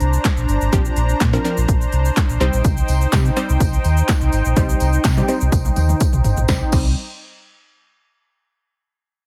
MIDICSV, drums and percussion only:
0, 0, Header, 1, 2, 480
1, 0, Start_track
1, 0, Key_signature, -3, "minor"
1, 0, Tempo, 480000
1, 726, Time_signature, 4, 2, 24, 8
1, 9263, End_track
2, 0, Start_track
2, 0, Title_t, "Drums"
2, 4, Note_on_c, 9, 42, 45
2, 4, Note_on_c, 9, 82, 44
2, 104, Note_off_c, 9, 42, 0
2, 104, Note_off_c, 9, 82, 0
2, 133, Note_on_c, 9, 82, 74
2, 233, Note_off_c, 9, 82, 0
2, 246, Note_on_c, 9, 39, 104
2, 246, Note_on_c, 9, 42, 76
2, 246, Note_on_c, 9, 82, 73
2, 248, Note_on_c, 9, 36, 109
2, 253, Note_on_c, 9, 38, 83
2, 346, Note_off_c, 9, 39, 0
2, 346, Note_off_c, 9, 42, 0
2, 346, Note_off_c, 9, 82, 0
2, 348, Note_off_c, 9, 36, 0
2, 353, Note_off_c, 9, 38, 0
2, 372, Note_on_c, 9, 82, 51
2, 472, Note_off_c, 9, 82, 0
2, 488, Note_on_c, 9, 42, 51
2, 488, Note_on_c, 9, 82, 49
2, 588, Note_off_c, 9, 42, 0
2, 588, Note_off_c, 9, 82, 0
2, 612, Note_on_c, 9, 82, 74
2, 712, Note_off_c, 9, 82, 0
2, 727, Note_on_c, 9, 36, 117
2, 727, Note_on_c, 9, 42, 70
2, 727, Note_on_c, 9, 82, 72
2, 827, Note_off_c, 9, 36, 0
2, 827, Note_off_c, 9, 42, 0
2, 827, Note_off_c, 9, 82, 0
2, 853, Note_on_c, 9, 82, 67
2, 953, Note_off_c, 9, 82, 0
2, 965, Note_on_c, 9, 42, 56
2, 965, Note_on_c, 9, 82, 57
2, 1065, Note_off_c, 9, 42, 0
2, 1065, Note_off_c, 9, 82, 0
2, 1092, Note_on_c, 9, 82, 68
2, 1192, Note_off_c, 9, 82, 0
2, 1204, Note_on_c, 9, 42, 74
2, 1204, Note_on_c, 9, 82, 77
2, 1207, Note_on_c, 9, 36, 115
2, 1208, Note_on_c, 9, 39, 116
2, 1215, Note_on_c, 9, 38, 102
2, 1304, Note_off_c, 9, 42, 0
2, 1304, Note_off_c, 9, 82, 0
2, 1307, Note_off_c, 9, 36, 0
2, 1308, Note_off_c, 9, 39, 0
2, 1315, Note_off_c, 9, 38, 0
2, 1336, Note_on_c, 9, 82, 53
2, 1436, Note_off_c, 9, 82, 0
2, 1450, Note_on_c, 9, 42, 60
2, 1450, Note_on_c, 9, 82, 58
2, 1550, Note_off_c, 9, 42, 0
2, 1550, Note_off_c, 9, 82, 0
2, 1574, Note_on_c, 9, 82, 81
2, 1674, Note_off_c, 9, 82, 0
2, 1685, Note_on_c, 9, 36, 111
2, 1686, Note_on_c, 9, 42, 74
2, 1686, Note_on_c, 9, 82, 73
2, 1785, Note_off_c, 9, 36, 0
2, 1787, Note_off_c, 9, 42, 0
2, 1787, Note_off_c, 9, 82, 0
2, 1814, Note_on_c, 9, 82, 55
2, 1914, Note_off_c, 9, 82, 0
2, 1925, Note_on_c, 9, 42, 47
2, 1925, Note_on_c, 9, 82, 45
2, 2025, Note_off_c, 9, 42, 0
2, 2025, Note_off_c, 9, 82, 0
2, 2053, Note_on_c, 9, 82, 78
2, 2153, Note_off_c, 9, 82, 0
2, 2167, Note_on_c, 9, 39, 105
2, 2167, Note_on_c, 9, 42, 74
2, 2167, Note_on_c, 9, 82, 77
2, 2169, Note_on_c, 9, 36, 106
2, 2174, Note_on_c, 9, 38, 83
2, 2267, Note_off_c, 9, 39, 0
2, 2267, Note_off_c, 9, 42, 0
2, 2267, Note_off_c, 9, 82, 0
2, 2269, Note_off_c, 9, 36, 0
2, 2274, Note_off_c, 9, 38, 0
2, 2295, Note_on_c, 9, 82, 52
2, 2395, Note_off_c, 9, 82, 0
2, 2408, Note_on_c, 9, 42, 51
2, 2408, Note_on_c, 9, 82, 47
2, 2508, Note_off_c, 9, 42, 0
2, 2508, Note_off_c, 9, 82, 0
2, 2532, Note_on_c, 9, 82, 75
2, 2632, Note_off_c, 9, 82, 0
2, 2644, Note_on_c, 9, 42, 72
2, 2644, Note_on_c, 9, 82, 73
2, 2646, Note_on_c, 9, 36, 122
2, 2648, Note_on_c, 9, 54, 36
2, 2744, Note_off_c, 9, 42, 0
2, 2744, Note_off_c, 9, 82, 0
2, 2746, Note_off_c, 9, 36, 0
2, 2748, Note_off_c, 9, 54, 0
2, 2773, Note_on_c, 9, 82, 63
2, 2873, Note_off_c, 9, 82, 0
2, 2883, Note_on_c, 9, 42, 57
2, 2883, Note_on_c, 9, 82, 57
2, 2888, Note_on_c, 9, 54, 51
2, 2983, Note_off_c, 9, 42, 0
2, 2983, Note_off_c, 9, 82, 0
2, 2988, Note_off_c, 9, 54, 0
2, 3013, Note_on_c, 9, 82, 68
2, 3113, Note_off_c, 9, 82, 0
2, 3123, Note_on_c, 9, 42, 78
2, 3123, Note_on_c, 9, 82, 78
2, 3126, Note_on_c, 9, 54, 93
2, 3127, Note_on_c, 9, 36, 116
2, 3127, Note_on_c, 9, 39, 127
2, 3134, Note_on_c, 9, 38, 98
2, 3223, Note_off_c, 9, 42, 0
2, 3223, Note_off_c, 9, 82, 0
2, 3226, Note_off_c, 9, 54, 0
2, 3227, Note_off_c, 9, 36, 0
2, 3227, Note_off_c, 9, 39, 0
2, 3234, Note_off_c, 9, 38, 0
2, 3254, Note_on_c, 9, 82, 54
2, 3354, Note_off_c, 9, 82, 0
2, 3366, Note_on_c, 9, 54, 47
2, 3367, Note_on_c, 9, 42, 62
2, 3367, Note_on_c, 9, 82, 59
2, 3466, Note_off_c, 9, 54, 0
2, 3467, Note_off_c, 9, 42, 0
2, 3467, Note_off_c, 9, 82, 0
2, 3493, Note_on_c, 9, 82, 79
2, 3593, Note_off_c, 9, 82, 0
2, 3604, Note_on_c, 9, 36, 107
2, 3605, Note_on_c, 9, 42, 74
2, 3605, Note_on_c, 9, 82, 75
2, 3606, Note_on_c, 9, 54, 49
2, 3704, Note_off_c, 9, 36, 0
2, 3705, Note_off_c, 9, 42, 0
2, 3705, Note_off_c, 9, 82, 0
2, 3706, Note_off_c, 9, 54, 0
2, 3733, Note_on_c, 9, 82, 57
2, 3833, Note_off_c, 9, 82, 0
2, 3844, Note_on_c, 9, 42, 47
2, 3844, Note_on_c, 9, 82, 46
2, 3846, Note_on_c, 9, 54, 53
2, 3944, Note_off_c, 9, 42, 0
2, 3944, Note_off_c, 9, 82, 0
2, 3946, Note_off_c, 9, 54, 0
2, 3972, Note_on_c, 9, 82, 78
2, 4072, Note_off_c, 9, 82, 0
2, 4084, Note_on_c, 9, 39, 103
2, 4084, Note_on_c, 9, 42, 78
2, 4084, Note_on_c, 9, 82, 79
2, 4085, Note_on_c, 9, 54, 79
2, 4088, Note_on_c, 9, 36, 105
2, 4092, Note_on_c, 9, 38, 84
2, 4184, Note_off_c, 9, 39, 0
2, 4184, Note_off_c, 9, 42, 0
2, 4184, Note_off_c, 9, 82, 0
2, 4185, Note_off_c, 9, 54, 0
2, 4188, Note_off_c, 9, 36, 0
2, 4191, Note_off_c, 9, 38, 0
2, 4213, Note_on_c, 9, 82, 55
2, 4313, Note_off_c, 9, 82, 0
2, 4324, Note_on_c, 9, 54, 29
2, 4326, Note_on_c, 9, 42, 48
2, 4326, Note_on_c, 9, 82, 51
2, 4424, Note_off_c, 9, 54, 0
2, 4426, Note_off_c, 9, 42, 0
2, 4426, Note_off_c, 9, 82, 0
2, 4450, Note_on_c, 9, 82, 73
2, 4550, Note_off_c, 9, 82, 0
2, 4565, Note_on_c, 9, 42, 74
2, 4565, Note_on_c, 9, 54, 36
2, 4565, Note_on_c, 9, 82, 75
2, 4566, Note_on_c, 9, 36, 119
2, 4665, Note_off_c, 9, 42, 0
2, 4665, Note_off_c, 9, 54, 0
2, 4665, Note_off_c, 9, 82, 0
2, 4666, Note_off_c, 9, 36, 0
2, 4693, Note_on_c, 9, 82, 64
2, 4793, Note_off_c, 9, 82, 0
2, 4803, Note_on_c, 9, 42, 59
2, 4803, Note_on_c, 9, 82, 58
2, 4804, Note_on_c, 9, 54, 52
2, 4903, Note_off_c, 9, 42, 0
2, 4903, Note_off_c, 9, 82, 0
2, 4904, Note_off_c, 9, 54, 0
2, 4931, Note_on_c, 9, 82, 69
2, 5031, Note_off_c, 9, 82, 0
2, 5041, Note_on_c, 9, 42, 76
2, 5041, Note_on_c, 9, 82, 77
2, 5044, Note_on_c, 9, 39, 127
2, 5045, Note_on_c, 9, 54, 91
2, 5046, Note_on_c, 9, 36, 113
2, 5052, Note_on_c, 9, 38, 103
2, 5141, Note_off_c, 9, 42, 0
2, 5141, Note_off_c, 9, 82, 0
2, 5144, Note_off_c, 9, 39, 0
2, 5145, Note_off_c, 9, 54, 0
2, 5146, Note_off_c, 9, 36, 0
2, 5151, Note_off_c, 9, 38, 0
2, 5173, Note_on_c, 9, 82, 55
2, 5273, Note_off_c, 9, 82, 0
2, 5284, Note_on_c, 9, 54, 47
2, 5285, Note_on_c, 9, 42, 59
2, 5285, Note_on_c, 9, 82, 59
2, 5384, Note_off_c, 9, 54, 0
2, 5385, Note_off_c, 9, 42, 0
2, 5385, Note_off_c, 9, 82, 0
2, 5409, Note_on_c, 9, 82, 84
2, 5509, Note_off_c, 9, 82, 0
2, 5523, Note_on_c, 9, 36, 113
2, 5523, Note_on_c, 9, 42, 77
2, 5523, Note_on_c, 9, 48, 59
2, 5523, Note_on_c, 9, 82, 78
2, 5525, Note_on_c, 9, 54, 50
2, 5623, Note_off_c, 9, 36, 0
2, 5623, Note_off_c, 9, 42, 0
2, 5623, Note_off_c, 9, 48, 0
2, 5623, Note_off_c, 9, 82, 0
2, 5625, Note_off_c, 9, 54, 0
2, 5651, Note_on_c, 9, 48, 55
2, 5651, Note_on_c, 9, 82, 59
2, 5751, Note_off_c, 9, 48, 0
2, 5751, Note_off_c, 9, 82, 0
2, 5763, Note_on_c, 9, 54, 53
2, 5764, Note_on_c, 9, 42, 48
2, 5764, Note_on_c, 9, 82, 45
2, 5766, Note_on_c, 9, 47, 73
2, 5863, Note_off_c, 9, 54, 0
2, 5864, Note_off_c, 9, 42, 0
2, 5864, Note_off_c, 9, 82, 0
2, 5866, Note_off_c, 9, 47, 0
2, 5892, Note_on_c, 9, 47, 72
2, 5892, Note_on_c, 9, 82, 75
2, 5992, Note_off_c, 9, 47, 0
2, 5992, Note_off_c, 9, 82, 0
2, 6004, Note_on_c, 9, 54, 83
2, 6005, Note_on_c, 9, 42, 80
2, 6005, Note_on_c, 9, 82, 78
2, 6008, Note_on_c, 9, 36, 113
2, 6104, Note_off_c, 9, 54, 0
2, 6105, Note_off_c, 9, 42, 0
2, 6105, Note_off_c, 9, 82, 0
2, 6108, Note_off_c, 9, 36, 0
2, 6130, Note_on_c, 9, 82, 53
2, 6131, Note_on_c, 9, 45, 78
2, 6230, Note_off_c, 9, 82, 0
2, 6231, Note_off_c, 9, 45, 0
2, 6243, Note_on_c, 9, 54, 30
2, 6244, Note_on_c, 9, 43, 102
2, 6245, Note_on_c, 9, 42, 50
2, 6245, Note_on_c, 9, 82, 48
2, 6343, Note_off_c, 9, 54, 0
2, 6344, Note_off_c, 9, 43, 0
2, 6345, Note_off_c, 9, 42, 0
2, 6345, Note_off_c, 9, 82, 0
2, 6371, Note_on_c, 9, 82, 71
2, 6373, Note_on_c, 9, 43, 92
2, 6471, Note_off_c, 9, 82, 0
2, 6473, Note_off_c, 9, 43, 0
2, 6482, Note_on_c, 9, 54, 79
2, 6486, Note_on_c, 9, 36, 109
2, 6486, Note_on_c, 9, 38, 84
2, 6582, Note_off_c, 9, 54, 0
2, 6586, Note_off_c, 9, 36, 0
2, 6586, Note_off_c, 9, 38, 0
2, 6722, Note_on_c, 9, 54, 84
2, 6726, Note_on_c, 9, 36, 106
2, 6727, Note_on_c, 9, 49, 87
2, 6822, Note_off_c, 9, 54, 0
2, 6826, Note_off_c, 9, 36, 0
2, 6827, Note_off_c, 9, 49, 0
2, 9263, End_track
0, 0, End_of_file